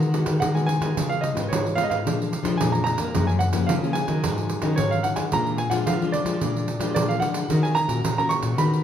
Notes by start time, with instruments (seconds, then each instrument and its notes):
Already playing: nylon-string guitar D#3, grand piano F#5
0.03 pandeiro
0.13 nylon-string guitar G#3 B3 F#4, pandeiro
0.26 nylon-string guitar D#3, pandeiro
0.40 nylon-string guitar D#3, grand piano F#5, pandeiro
0.55 nylon-string guitar G#3 B3 F#4, grand piano G#5, pandeiro
0.66 grand piano G#5, pandeiro
0.80 nylon-string guitar D#3 G#3 B3 F4, pandeiro
0.96 nylon-string guitar C#3, pandeiro
1.09 grand piano F5, pandeiro
1.21 grand piano D#5, pandeiro
1.34 nylon-string guitar G#2 G#3 B3 F4, pandeiro
1.48 nylon-string guitar G#2, grand piano C#5
1.53 pandeiro
1.67 pandeiro
1.75 nylon-string guitar G#3 B3 F4, grand piano F5, pandeiro
1.83 grand piano D#5
1.90 nylon-string guitar G#2, grand piano F5, pandeiro
2.05 nylon-string guitar A#2 F3 G#3 D4, pandeiro
2.22 pandeiro
2.33 pandeiro
2.43 nylon-string guitar F3 G#3 D4, pandeiro
2.58 nylon-string guitar F2 A#2, grand piano G#5, pandeiro
2.72 grand piano A#5, pandeiro
2.84 nylon-string guitar F3 G#3 D4, grand piano A#5, pandeiro
2.98 nylon-string guitar A#3, pandeiro
3.14 nylon-string guitar F#2 F3 A#3 C#4, pandeiro
3.27 grand piano G#5, pandeiro
3.39 grand piano F#5, pandeiro
3.52 nylon-string guitar C#3 F3 A#3 C#4, pandeiro
3.67 nylon-string guitar C#3, grand piano F5, pandeiro
3.83 nylon-string guitar F3 A#3 C#4, pandeiro
3.93 grand piano G#5, pandeiro
4.07 nylon-string guitar D#3 F#3 C#4 D#4, pandeiro
4.23 nylon-string guitar G#2, pandeiro
4.38 pandeiro
4.50 pandeiro
4.62 nylon-string guitar D#3 F#3 C#4 D#4, pandeiro
4.76 nylon-string guitar G#2 D#3, grand piano C#5, pandeiro
4.91 grand piano F5, pandeiro
5.03 nylon-string guitar F#3 C#4 D#4, grand piano F#5, pandeiro
5.16 nylon-string guitar G#3, grand piano G#5, pandeiro
5.32 nylon-string guitar A#2 G#3 D4 F4, grand piano A#5, pandeiro
5.47 pandeiro
5.58 grand piano G#5, pandeiro
5.70 nylon-string guitar F3 G#3 D4 F4, grand piano F#5, pandeiro
5.86 nylon-string guitar F3, grand piano F5, pandeiro
6.02 nylon-string guitar G#3 D4 F4, pandeiro
6.12 grand piano D5, pandeiro
6.25 nylon-string guitar F3 G#3 D4 F4, pandeiro
6.41 nylon-string guitar A#2 G#3 D4 F4, pandeiro
6.56 pandeiro
6.68 pandeiro
6.79 nylon-string guitar F3 G#3 D4 F4, pandeiro
6.94 nylon-string guitar A#2 F3, grand piano D5, pandeiro
7.09 grand piano F5, pandeiro
7.20 nylon-string guitar D3 G#3 D4 F4, grand piano F#5, pandeiro
7.34 pandeiro
7.48 nylon-string guitar D#3 C#4 F#4 A#4, pandeiro
7.63 grand piano G#5, pandeiro
7.75 grand piano A#5, pandeiro
7.88 nylon-string guitar A#2 C#4 F#4 A#4, pandeiro
8.04 nylon-string guitar A#2, pandeiro
8.18 nylon-string guitar C#4 F#4 A#4, grand piano A#5, pandeiro
8.29 grand piano C#6, pandeiro
8.43 nylon-string guitar A#2, pandeiro
8.58 nylon-string guitar D#3 B3 F#4 A#4, grand piano B5, pandeiro
8.73 pandeiro